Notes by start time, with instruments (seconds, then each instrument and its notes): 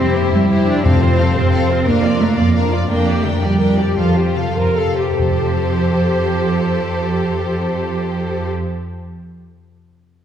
Already playing: double bass section F2, timpani F2, harp F2, cello section C4
0.00 viola section E4, harp G4, violin section G4 C5
0.16 harp C3, cello section A3
0.33 double bass section F2, cello section G3, harp G4
0.50 harp E4, viola section E4, violin section G4 C5
0.67 cello section D4, harp C5
0.83 harp F2, double bass section F2, timpani F2, cello section C4, viola section C4, violin section A4 F5
1.00 viola section F4, harp A4, violin section C5
1.17 harp C3, viola section C4, violin section A4 F5
1.34 double bass section F2, viola section F4, harp A4, violin section C5
1.51 viola section C4, harp F4, violin section A4 F5
1.68 viola section F4, violin section C5
1.85 harp F2, double bass section F2, cello section A#3, viola section D4, violin section A#4 F5
2.02 viola section F4, harp A#4, violin section D5
2.19 harp F3, cello section A3, viola section D4, violin section A#4 F5
2.36 double bass section F2, cello section A#3, viola section F4, harp A#4, violin section D5
2.54 viola section D4, harp F4, violin section A#4 F5
2.71 viola section F4, harp D5, violin section D5
2.88 harp F2, double bass section F2, cello section A#3, viola section D4, violin section A#4 G5
3.06 viola section G4, violin section G4 D5, harp A#4
3.23 harp D3, cello section A3, viola section D4, violin section A#4 G5
3.41 double bass section F2, cello section G3, violin section G4 D5, viola section G4, harp A#4
3.58 viola section D4, harp G4, violin section A#4 G5
3.78 violin section G4 D5, viola section G4, harp D5
3.96 harp F2, double bass section F2, cello section F3, viola section F4, violin section A4 F5
4.15 violin section F4 C5, viola section G4, harp A4
4.35 harp C3, viola section F4, violin section A4 F5
4.55 double bass section F2, violin section F4 C5, harp A4, viola section A#4
4.75 harp G4, violin section A4 F5, viola section A4
4.96 violin section F4 C5, viola section G4, harp C5
5.17 harp F2, double bass section F2, timpani F2, cello section F3, viola section G4, violin section A4 C5
5.24 harp F3
5.31 harp G4
5.38 harp A4
5.45 harp C5
5.52 harp A5